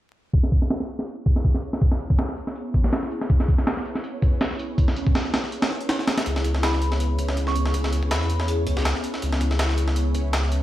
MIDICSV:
0, 0, Header, 1, 4, 480
1, 0, Start_track
1, 0, Key_signature, 4, "minor"
1, 0, Tempo, 370370
1, 435, Time_signature, 4, 2, 24, 8
1, 13775, End_track
2, 0, Start_track
2, 0, Title_t, "Synth bell"
2, 0, Program_c, 0, 98
2, 8595, Note_on_c, 0, 83, 86
2, 8965, Note_off_c, 0, 83, 0
2, 9688, Note_on_c, 0, 85, 85
2, 10037, Note_off_c, 0, 85, 0
2, 10514, Note_on_c, 0, 83, 87
2, 10994, Note_off_c, 0, 83, 0
2, 13775, End_track
3, 0, Start_track
3, 0, Title_t, "Sub bass"
3, 0, Program_c, 1, 38
3, 8115, Note_on_c, 1, 37, 97
3, 10514, Note_on_c, 1, 40, 101
3, 10534, Note_off_c, 1, 37, 0
3, 11217, Note_off_c, 1, 40, 0
3, 11232, Note_on_c, 1, 37, 101
3, 11351, Note_off_c, 1, 37, 0
3, 11363, Note_on_c, 1, 37, 88
3, 11578, Note_off_c, 1, 37, 0
3, 11954, Note_on_c, 1, 37, 91
3, 13775, Note_off_c, 1, 37, 0
3, 13775, End_track
4, 0, Start_track
4, 0, Title_t, "Drums"
4, 432, Note_on_c, 9, 42, 82
4, 433, Note_on_c, 9, 36, 102
4, 562, Note_off_c, 9, 36, 0
4, 562, Note_off_c, 9, 42, 0
4, 562, Note_on_c, 9, 38, 53
4, 670, Note_on_c, 9, 42, 62
4, 672, Note_on_c, 9, 36, 86
4, 692, Note_off_c, 9, 38, 0
4, 800, Note_off_c, 9, 42, 0
4, 802, Note_off_c, 9, 36, 0
4, 802, Note_on_c, 9, 38, 42
4, 911, Note_off_c, 9, 38, 0
4, 911, Note_on_c, 9, 38, 104
4, 911, Note_on_c, 9, 42, 82
4, 1040, Note_off_c, 9, 38, 0
4, 1040, Note_on_c, 9, 38, 38
4, 1041, Note_off_c, 9, 42, 0
4, 1151, Note_on_c, 9, 42, 60
4, 1170, Note_off_c, 9, 38, 0
4, 1281, Note_off_c, 9, 42, 0
4, 1282, Note_on_c, 9, 38, 41
4, 1393, Note_on_c, 9, 42, 83
4, 1411, Note_off_c, 9, 38, 0
4, 1522, Note_off_c, 9, 42, 0
4, 1633, Note_on_c, 9, 36, 93
4, 1634, Note_on_c, 9, 42, 74
4, 1763, Note_off_c, 9, 36, 0
4, 1763, Note_off_c, 9, 42, 0
4, 1764, Note_on_c, 9, 38, 48
4, 1873, Note_on_c, 9, 36, 76
4, 1873, Note_on_c, 9, 42, 51
4, 1894, Note_off_c, 9, 38, 0
4, 2002, Note_on_c, 9, 38, 37
4, 2003, Note_off_c, 9, 36, 0
4, 2003, Note_off_c, 9, 42, 0
4, 2113, Note_on_c, 9, 42, 60
4, 2132, Note_off_c, 9, 38, 0
4, 2242, Note_off_c, 9, 42, 0
4, 2244, Note_on_c, 9, 38, 47
4, 2352, Note_on_c, 9, 42, 86
4, 2353, Note_on_c, 9, 36, 101
4, 2373, Note_off_c, 9, 38, 0
4, 2482, Note_off_c, 9, 36, 0
4, 2482, Note_off_c, 9, 42, 0
4, 2482, Note_on_c, 9, 38, 49
4, 2594, Note_on_c, 9, 42, 64
4, 2611, Note_off_c, 9, 38, 0
4, 2723, Note_off_c, 9, 42, 0
4, 2723, Note_on_c, 9, 36, 89
4, 2832, Note_on_c, 9, 38, 106
4, 2832, Note_on_c, 9, 42, 80
4, 2853, Note_off_c, 9, 36, 0
4, 2962, Note_off_c, 9, 38, 0
4, 2962, Note_off_c, 9, 42, 0
4, 2964, Note_on_c, 9, 38, 34
4, 3072, Note_on_c, 9, 42, 60
4, 3093, Note_off_c, 9, 38, 0
4, 3202, Note_off_c, 9, 42, 0
4, 3203, Note_on_c, 9, 38, 43
4, 3312, Note_on_c, 9, 42, 82
4, 3333, Note_off_c, 9, 38, 0
4, 3442, Note_off_c, 9, 42, 0
4, 3554, Note_on_c, 9, 36, 92
4, 3554, Note_on_c, 9, 42, 61
4, 3683, Note_on_c, 9, 38, 52
4, 3684, Note_off_c, 9, 36, 0
4, 3684, Note_off_c, 9, 42, 0
4, 3793, Note_off_c, 9, 38, 0
4, 3793, Note_on_c, 9, 38, 102
4, 3793, Note_on_c, 9, 42, 81
4, 3923, Note_off_c, 9, 38, 0
4, 3923, Note_off_c, 9, 42, 0
4, 3924, Note_on_c, 9, 38, 35
4, 4034, Note_on_c, 9, 42, 60
4, 4054, Note_off_c, 9, 38, 0
4, 4163, Note_off_c, 9, 42, 0
4, 4166, Note_on_c, 9, 38, 47
4, 4274, Note_on_c, 9, 36, 111
4, 4275, Note_on_c, 9, 42, 83
4, 4295, Note_off_c, 9, 38, 0
4, 4404, Note_off_c, 9, 36, 0
4, 4404, Note_off_c, 9, 42, 0
4, 4405, Note_on_c, 9, 38, 52
4, 4514, Note_on_c, 9, 36, 90
4, 4514, Note_on_c, 9, 42, 63
4, 4535, Note_off_c, 9, 38, 0
4, 4643, Note_off_c, 9, 42, 0
4, 4644, Note_off_c, 9, 36, 0
4, 4644, Note_on_c, 9, 38, 43
4, 4755, Note_off_c, 9, 38, 0
4, 4755, Note_on_c, 9, 38, 108
4, 4755, Note_on_c, 9, 42, 82
4, 4885, Note_off_c, 9, 38, 0
4, 4885, Note_off_c, 9, 42, 0
4, 4886, Note_on_c, 9, 38, 41
4, 4995, Note_on_c, 9, 42, 61
4, 5016, Note_off_c, 9, 38, 0
4, 5125, Note_off_c, 9, 42, 0
4, 5125, Note_on_c, 9, 38, 44
4, 5234, Note_on_c, 9, 42, 80
4, 5254, Note_off_c, 9, 38, 0
4, 5363, Note_off_c, 9, 42, 0
4, 5473, Note_on_c, 9, 42, 64
4, 5474, Note_on_c, 9, 36, 91
4, 5603, Note_off_c, 9, 42, 0
4, 5604, Note_off_c, 9, 36, 0
4, 5714, Note_on_c, 9, 38, 104
4, 5714, Note_on_c, 9, 42, 79
4, 5843, Note_off_c, 9, 38, 0
4, 5843, Note_off_c, 9, 42, 0
4, 5845, Note_on_c, 9, 38, 33
4, 5955, Note_on_c, 9, 42, 67
4, 5974, Note_off_c, 9, 38, 0
4, 6084, Note_off_c, 9, 42, 0
4, 6195, Note_on_c, 9, 36, 107
4, 6196, Note_on_c, 9, 42, 83
4, 6325, Note_off_c, 9, 36, 0
4, 6325, Note_on_c, 9, 38, 52
4, 6326, Note_off_c, 9, 42, 0
4, 6434, Note_on_c, 9, 42, 67
4, 6455, Note_off_c, 9, 38, 0
4, 6564, Note_off_c, 9, 42, 0
4, 6565, Note_on_c, 9, 36, 88
4, 6676, Note_on_c, 9, 38, 110
4, 6676, Note_on_c, 9, 42, 86
4, 6695, Note_off_c, 9, 36, 0
4, 6805, Note_off_c, 9, 38, 0
4, 6805, Note_off_c, 9, 42, 0
4, 6807, Note_on_c, 9, 38, 33
4, 6916, Note_off_c, 9, 38, 0
4, 6916, Note_on_c, 9, 38, 100
4, 6916, Note_on_c, 9, 42, 74
4, 7046, Note_off_c, 9, 38, 0
4, 7046, Note_off_c, 9, 42, 0
4, 7047, Note_on_c, 9, 38, 35
4, 7156, Note_on_c, 9, 42, 57
4, 7177, Note_off_c, 9, 38, 0
4, 7286, Note_off_c, 9, 42, 0
4, 7287, Note_on_c, 9, 38, 107
4, 7287, Note_on_c, 9, 42, 76
4, 7396, Note_off_c, 9, 38, 0
4, 7396, Note_on_c, 9, 38, 37
4, 7416, Note_off_c, 9, 42, 0
4, 7524, Note_on_c, 9, 42, 57
4, 7526, Note_off_c, 9, 38, 0
4, 7634, Note_off_c, 9, 42, 0
4, 7634, Note_on_c, 9, 38, 94
4, 7634, Note_on_c, 9, 42, 70
4, 7763, Note_off_c, 9, 38, 0
4, 7763, Note_off_c, 9, 42, 0
4, 7765, Note_on_c, 9, 38, 37
4, 7873, Note_off_c, 9, 38, 0
4, 7873, Note_on_c, 9, 38, 95
4, 7873, Note_on_c, 9, 42, 75
4, 8003, Note_off_c, 9, 38, 0
4, 8003, Note_off_c, 9, 42, 0
4, 8004, Note_on_c, 9, 38, 101
4, 8004, Note_on_c, 9, 42, 76
4, 8113, Note_off_c, 9, 42, 0
4, 8113, Note_on_c, 9, 42, 87
4, 8114, Note_on_c, 9, 36, 107
4, 8134, Note_off_c, 9, 38, 0
4, 8243, Note_off_c, 9, 42, 0
4, 8244, Note_off_c, 9, 36, 0
4, 8245, Note_on_c, 9, 38, 55
4, 8353, Note_on_c, 9, 42, 66
4, 8354, Note_on_c, 9, 36, 94
4, 8374, Note_off_c, 9, 38, 0
4, 8482, Note_off_c, 9, 42, 0
4, 8484, Note_off_c, 9, 36, 0
4, 8484, Note_on_c, 9, 38, 45
4, 8595, Note_off_c, 9, 38, 0
4, 8595, Note_on_c, 9, 38, 110
4, 8595, Note_on_c, 9, 42, 85
4, 8723, Note_off_c, 9, 38, 0
4, 8723, Note_on_c, 9, 38, 40
4, 8725, Note_off_c, 9, 42, 0
4, 8834, Note_on_c, 9, 42, 64
4, 8853, Note_off_c, 9, 38, 0
4, 8964, Note_off_c, 9, 42, 0
4, 8965, Note_on_c, 9, 38, 46
4, 9072, Note_on_c, 9, 42, 85
4, 9094, Note_off_c, 9, 38, 0
4, 9202, Note_off_c, 9, 42, 0
4, 9312, Note_on_c, 9, 42, 75
4, 9314, Note_on_c, 9, 36, 94
4, 9441, Note_on_c, 9, 38, 53
4, 9442, Note_off_c, 9, 42, 0
4, 9443, Note_off_c, 9, 36, 0
4, 9550, Note_on_c, 9, 42, 58
4, 9553, Note_on_c, 9, 36, 78
4, 9571, Note_off_c, 9, 38, 0
4, 9680, Note_off_c, 9, 42, 0
4, 9680, Note_on_c, 9, 38, 37
4, 9682, Note_off_c, 9, 36, 0
4, 9792, Note_on_c, 9, 42, 66
4, 9809, Note_off_c, 9, 38, 0
4, 9921, Note_off_c, 9, 42, 0
4, 9921, Note_on_c, 9, 38, 45
4, 10031, Note_on_c, 9, 42, 92
4, 10033, Note_on_c, 9, 36, 111
4, 10051, Note_off_c, 9, 38, 0
4, 10160, Note_off_c, 9, 42, 0
4, 10162, Note_off_c, 9, 36, 0
4, 10163, Note_on_c, 9, 38, 50
4, 10272, Note_on_c, 9, 42, 67
4, 10293, Note_off_c, 9, 38, 0
4, 10401, Note_off_c, 9, 42, 0
4, 10403, Note_on_c, 9, 36, 89
4, 10511, Note_on_c, 9, 38, 110
4, 10511, Note_on_c, 9, 42, 85
4, 10532, Note_off_c, 9, 36, 0
4, 10641, Note_off_c, 9, 38, 0
4, 10641, Note_off_c, 9, 42, 0
4, 10645, Note_on_c, 9, 38, 35
4, 10753, Note_on_c, 9, 42, 63
4, 10774, Note_off_c, 9, 38, 0
4, 10882, Note_off_c, 9, 42, 0
4, 10883, Note_on_c, 9, 38, 47
4, 10992, Note_on_c, 9, 42, 84
4, 11012, Note_off_c, 9, 38, 0
4, 11122, Note_off_c, 9, 42, 0
4, 11231, Note_on_c, 9, 42, 68
4, 11233, Note_on_c, 9, 36, 94
4, 11360, Note_off_c, 9, 42, 0
4, 11362, Note_off_c, 9, 36, 0
4, 11363, Note_on_c, 9, 38, 56
4, 11473, Note_off_c, 9, 38, 0
4, 11473, Note_on_c, 9, 38, 108
4, 11473, Note_on_c, 9, 42, 80
4, 11602, Note_off_c, 9, 38, 0
4, 11602, Note_off_c, 9, 42, 0
4, 11602, Note_on_c, 9, 38, 39
4, 11712, Note_on_c, 9, 42, 67
4, 11731, Note_off_c, 9, 38, 0
4, 11842, Note_off_c, 9, 42, 0
4, 11842, Note_on_c, 9, 38, 45
4, 11952, Note_on_c, 9, 42, 91
4, 11953, Note_on_c, 9, 36, 108
4, 11972, Note_off_c, 9, 38, 0
4, 12081, Note_off_c, 9, 42, 0
4, 12083, Note_off_c, 9, 36, 0
4, 12085, Note_on_c, 9, 38, 57
4, 12193, Note_on_c, 9, 36, 98
4, 12193, Note_on_c, 9, 42, 64
4, 12215, Note_off_c, 9, 38, 0
4, 12322, Note_off_c, 9, 42, 0
4, 12323, Note_off_c, 9, 36, 0
4, 12323, Note_on_c, 9, 38, 47
4, 12431, Note_off_c, 9, 38, 0
4, 12431, Note_on_c, 9, 38, 115
4, 12431, Note_on_c, 9, 42, 86
4, 12560, Note_off_c, 9, 38, 0
4, 12560, Note_off_c, 9, 42, 0
4, 12562, Note_on_c, 9, 38, 42
4, 12671, Note_on_c, 9, 42, 64
4, 12692, Note_off_c, 9, 38, 0
4, 12800, Note_on_c, 9, 38, 45
4, 12801, Note_off_c, 9, 42, 0
4, 12909, Note_on_c, 9, 42, 88
4, 12930, Note_off_c, 9, 38, 0
4, 13039, Note_off_c, 9, 42, 0
4, 13149, Note_on_c, 9, 42, 66
4, 13152, Note_on_c, 9, 36, 98
4, 13279, Note_off_c, 9, 42, 0
4, 13281, Note_off_c, 9, 36, 0
4, 13390, Note_on_c, 9, 38, 109
4, 13390, Note_on_c, 9, 42, 84
4, 13520, Note_off_c, 9, 38, 0
4, 13520, Note_off_c, 9, 42, 0
4, 13521, Note_on_c, 9, 38, 36
4, 13630, Note_on_c, 9, 42, 67
4, 13651, Note_off_c, 9, 38, 0
4, 13760, Note_off_c, 9, 42, 0
4, 13775, End_track
0, 0, End_of_file